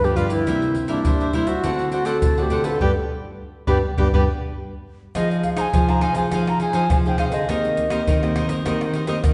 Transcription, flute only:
0.04 G4
0.16 F4
0.30 E4
0.89 D4
1.34 E4
1.47 F#4
1.92 F#4
2.06 A4
2.38 A4
2.43 G4
2.64 A4
2.81 G4
3.68 G4
3.99 G4
4.14 G4
5.16 D#5
5.31 D#5
5.44 F5
5.57 G#5 A#5
5.90 A#5
6.03 G#5
6.17 G#5
6.49 A#5
6.62 G#5
6.92 G#5
7.08 G5
7.19 F5
7.33 D#5

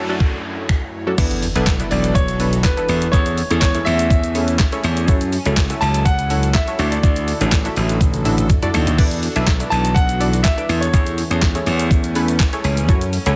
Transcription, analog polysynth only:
0.09 F#3 C#4 D4 F#4 A4
1.07 F#3 C#4 D4 F#4 A4
1.18 B3 D4 E4 A4 B4
1.55 B3 D4 E4 A4 B4
1.80 B3 D4 E4 A4 B4
2.40 B3 D4 E4 A4 B4
2.77 B3 D4 E4 A4 B4
3.13 C#4 E4 G#4 A4 C#5
3.50 C#4 E4 G#4 A4 C#5
3.75 C#4 E4 G#4 A4 C#5
4.35 C#4 E4 G#4 A4 C#5
4.72 C#4 E4 G#4 A4 C#5
5.08 C#4 E4 F#4 A4 C#5
5.45 C#4 E4 F#4 A4 C#5
5.70 C#4 E4 F#4 A4 E5
6.30 C#4 E4 F#4 A4 C#5
6.67 C#4 E4 F#4 A4 C#5
6.79 D4 E4 F#4 A4 D5
7.41 D4 E4 F#4 A4 C#5
7.65 D4 E4 F#4 A4 E5
8.25 D4 E4 F#4 A4 E5
8.63 D4 E4 F#4 A4 D5
8.98 D4 E4 A4 B4 D5
9.36 D4 E4 A4 B4 E5
9.60 D4 E4 A4 B4 D5
10.20 D4 E4 A4 B4 D5
10.57 D4 E4 A4 B4 D5
10.93 C#4 E4 G#4 A4 C#5
11.30 C#4 E4 G#4 A4 C#5
11.55 C#4 E4 G#4 A4 C#5
12.15 C#4 E4 G#4 A4 B4
12.53 C#4 E4 G#4 A4 C#5
12.89 C#4 E4 F#4 A4 C#5
13.26 C#4 E4 F#4 A4 C#5

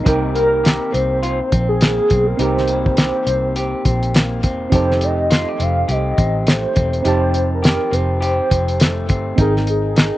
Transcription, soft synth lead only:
0.06 A#4
0.35 A#4
0.93 C5
1.69 G#4
2.27 A#4
2.38 C5
2.86 C5
4.74 C5
5.04 D#5
5.62 F5
5.91 D#5
6.49 C5
7.08 C5
7.54 A#4
7.94 C5
8.23 C5
9.40 G#4
9.69 G#4

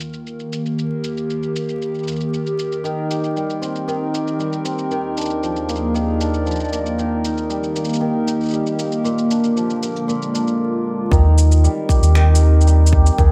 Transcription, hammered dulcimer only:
Already playing: A#3
2.84 D#3
3.10 G4
3.36 G3
3.62 C4
3.88 D#3
4.14 G4
4.39 G3
4.65 C4
4.91 D#3
5.17 D4
5.43 F3
5.69 A#3
5.94 D#3
6.20 D4
6.45 F3
6.72 A#3
6.98 D#3
7.24 D#4
7.49 G3
7.75 A#3
8.01 D#3
8.27 D#4
8.53 G3
8.79 A#3
9.04 A#2
9.30 D4
9.56 F3
9.82 A#3
10.08 A#2
10.34 D4
11.11 D#3 A#4
11.64 G3
11.90 G4
12.16 D#3
12.41 A#4
12.67 G3
12.93 G4
13.18 D#3 G#4

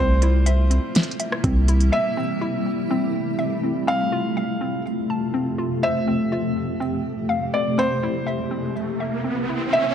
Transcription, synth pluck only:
Already playing: C4
0.23 E4
0.46 E5
0.70 C4
1.20 E5
1.44 C4
1.69 E4
1.92 E5
2.17 C4
2.41 E4
2.91 C4
3.39 E5
3.63 C4
3.87 C4
4.12 F4
4.37 F5
4.61 C4
5.10 A5
5.34 C4
5.58 F4
5.84 C5
6.08 C4
6.32 F4
6.80 C4
7.29 F5
7.54 C4
7.78 C4
8.03 E4
8.27 E5
8.51 C4
9.00 E5
9.24 C4
9.49 E4
9.73 E5

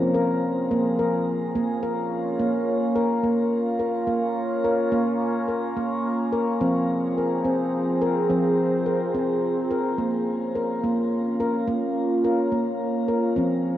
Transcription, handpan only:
Already playing: F3 C4
0.14 A#4
0.71 A#3
0.99 A#4
1.55 A#3
1.83 A#4
2.39 A#3
2.96 A#4
3.24 A#3
3.79 A#4
4.07 A#3
4.64 A#4
4.92 A#3
5.48 A#4
5.77 A#3
6.33 A#4
6.61 F3 C4
7.18 A#4
7.45 C4
8.02 A#4
8.30 F3 C4
8.86 A#4
9.15 C4
9.71 A#4
9.98 A#3
10.55 A#4
10.84 A#3
11.40 A#4
11.67 A#3
12.24 A#4
12.52 A#3
13.08 A#4
13.36 F3 C4

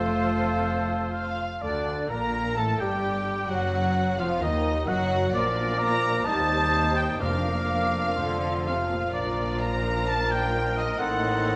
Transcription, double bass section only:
Already playing: F1
1.62 D2
2.10 A#1
2.57 A1
2.80 G1
3.50 F#1
4.18 F1
4.40 D#2
4.88 F#1
5.34 A#1
6.26 D#2
7.22 F1
9.14 A#1
11.01 A1

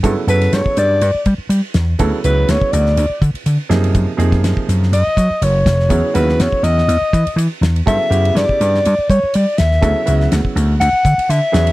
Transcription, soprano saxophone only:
0.29 B4
0.55 C#5
0.79 D5
2.25 B4
2.50 C#5
2.72 D5
4.93 D#5
5.44 C#5
6.15 B4
6.41 C#5
6.63 D#5
7.88 E5
8.37 D5
9.10 C#5
9.35 D5
9.58 E5
10.80 F#5
11.30 E5

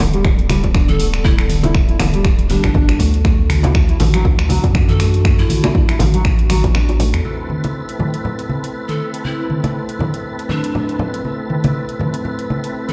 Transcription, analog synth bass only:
0.00 D1
2.00 D1
2.64 G1
3.00 D2
4.00 A1
4.25 D2
4.64 F#2
6.00 A1
7.14 E2

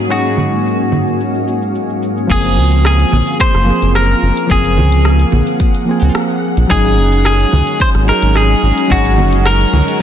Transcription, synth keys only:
Already playing: F#3 C#4 D#4 G#4
0.07 F#3 C#4 D#4
0.13 G#4
2.27 F3 A#3
2.31 C4 G#4
3.64 F3 A#3 C4
3.70 G#4
4.47 F3 A#3 C4
4.53 G#4
5.85 F3 A#3 C4
5.91 G#4
6.67 F#3 C#4 D#4
6.73 G#4
8.04 F#3 C#4 D#4
8.10 G#4
8.87 F#3 C#4 D#4
8.93 G#4

